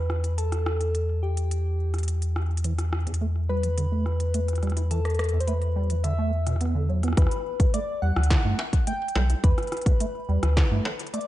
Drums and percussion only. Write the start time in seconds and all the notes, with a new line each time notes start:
0.10 cross-stick
0.24 closed hi-hat
0.38 closed hi-hat
0.52 cross-stick, closed hi-hat
0.66 cross-stick
0.81 closed hi-hat
0.95 closed hi-hat
1.37 closed hi-hat
1.51 closed hi-hat
1.94 cross-stick, closed hi-hat
1.98 closed hi-hat
2.03 closed hi-hat
2.08 closed hi-hat
2.22 closed hi-hat
2.36 cross-stick
2.57 closed hi-hat
2.64 closed hi-hat
2.79 cross-stick, closed hi-hat
2.93 cross-stick
3.07 closed hi-hat
3.14 closed hi-hat
3.63 closed hi-hat
3.78 closed hi-hat
4.06 cross-stick
4.20 closed hi-hat
4.34 closed hi-hat
4.48 cross-stick, closed hi-hat
4.53 cross-stick, closed hi-hat
4.58 cross-stick
4.63 cross-stick, closed hi-hat
4.67 cross-stick, closed hi-hat
4.72 cross-stick
4.77 closed hi-hat
4.91 closed hi-hat
5.05 cross-stick, closed hi-hat
5.10 closed hi-hat
5.14 closed hi-hat
5.19 cross-stick, closed hi-hat
5.24 closed hi-hat
5.29 closed hi-hat
5.40 closed hi-hat
5.48 closed hi-hat
5.62 closed hi-hat
5.90 closed hi-hat
6.04 closed hi-hat
6.47 cross-stick, closed hi-hat
6.56 cross-stick
6.61 closed hi-hat
6.65 cross-stick
7.03 cross-stick, closed hi-hat
7.08 cross-stick
7.13 cross-stick
7.17 kick, cross-stick, closed hi-hat
7.22 cross-stick
7.27 cross-stick
7.31 closed hi-hat
7.60 kick, closed hi-hat
7.74 closed hi-hat
8.16 cross-stick
8.23 closed hi-hat
8.30 kick, snare, closed hi-hat
8.59 struck metal
8.73 kick, closed hi-hat
8.87 closed hi-hat
9.08 closed hi-hat
9.15 cross-stick, struck metal
9.30 closed hi-hat
9.44 kick, closed hi-hat
9.58 cross-stick, closed hi-hat
9.63 closed hi-hat
9.67 closed hi-hat
9.72 cross-stick, closed hi-hat
9.77 closed hi-hat
9.81 closed hi-hat
9.86 kick, closed hi-hat
10.00 closed hi-hat
10.43 cross-stick, closed hi-hat
10.57 kick, snare
10.85 struck metal
10.99 closed hi-hat
11.07 closed hi-hat
11.14 closed hi-hat
11.21 closed hi-hat